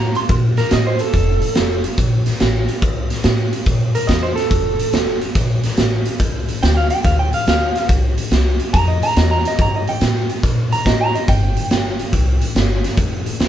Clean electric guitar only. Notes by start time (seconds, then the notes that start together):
Already playing: A#5
0.16 C6
0.58 A#4
0.73 D#5
0.87 C5
1.01 A4
3.95 A#4
4.07 D#5
4.23 C5
4.36 A4
6.63 G5
6.77 F5
6.91 G5
7.05 F5
7.19 G5
7.34 F5
7.49 F5
8.73 A#5
8.88 D#5
9.03 A#5
9.17 D#5
9.31 A#5
9.47 D#5
9.61 A#5
9.76 D#5
9.89 G5
10.73 A#5
10.86 D#5
11.01 A#5
11.15 D#5
11.29 G5